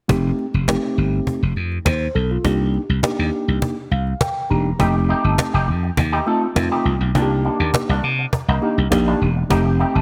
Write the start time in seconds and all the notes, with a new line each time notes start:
0.08 F1 A3 C4 D#4 G4, cajon bass
0.39 cajon slap
0.54 F1, cajon slap
0.68 A3 C4 D#4 G4, cajon bass, cajon slap
0.97 G1, cajon slap
1.14 cajon slap
1.27 cajon bass
1.42 F1, cajon slap
1.56 F2, cajon slap
1.72 cajon slap
1.85 D#2 C5, cajon bass, cajon slap
2.15 B1 A4, cajon slap
2.31 F4, cajon slap
2.45 C2 A#3 D4 D#4 G4, cajon bass
2.74 cajon slap
2.89 C2, cajon slap
3.03 A#3 D4 D#4 G4, cajon bass, cajon slap
3.19 D#2
3.33 cajon slap
3.48 C2, cajon slap
3.62 cajon bass
3.78 cajon slap
3.91 C2 F5, cajon slap
4.07 cajon slap
4.21 G5, cajon bass, cajon slap
4.50 E1 A#3 D4 D#4 G4 A#5, cajon slap
4.66 cajon slap
4.79 F1 A3 C4 D#4 G4, cajon bass
4.95 muted clean electric guitar stroke
5.09 A3 D#4 G4, cajon slap
5.24 G1 A3 D#4 A4, cajon slap
5.38 muted clean electric guitar stroke, cajon bass, cajon slap
5.54 F1 A3 D#4 G4, cajon slap
5.68 F2, muted clean electric guitar stroke, cajon slap
5.83 muted clean electric guitar stroke, cajon slap
5.97 D#2, muted clean electric guitar stroke, cajon bass
6.12 A3 D#4 G4
6.26 A3 C4 D#4 F4 A4, cajon slap
6.42 muted clean electric guitar stroke, cajon slap
6.56 F2 A3 C4 D#4 F4, muted clean electric guitar stroke, cajon bass, cajon slap
6.71 A3 D#4 G4, cajon slap
6.85 C2, muted clean electric guitar stroke
7.01 B1, muted clean electric guitar stroke, cajon slap
7.15 C2 D#3 A#3 D4 D#4 F4, cajon bass
7.22 G4
7.31 muted clean electric guitar stroke
7.45 D#3 A#3 D4, cajon slap
7.60 D#2 D#3 A#3 D4, cajon slap
7.74 muted clean electric guitar stroke, cajon bass, cajon slap
7.89 C2 D#3 A#3 D4, cajon slap
8.03 C3, muted clean electric guitar stroke, cajon slap
8.19 muted clean electric guitar stroke, cajon slap
8.33 muted clean electric guitar stroke, cajon bass
8.48 C2 D#3 A#3 D#4
8.62 D#3 A#3 D4 D#4 G4, cajon slap
8.78 C2, muted clean electric guitar stroke, cajon slap
8.91 A#1 A#3 D4 D#4 G4, muted clean electric guitar stroke, cajon bass, cajon slap
9.07 D#3 A#3 D4, cajon slap
9.21 E1, muted clean electric guitar stroke
9.36 muted clean electric guitar stroke, cajon slap
9.50 F1 A3 C4 D#4 G4, cajon bass
9.66 muted clean electric guitar stroke
9.80 A3 D#4 G4, cajon slap
9.95 G1 A3 D#4 A4, cajon slap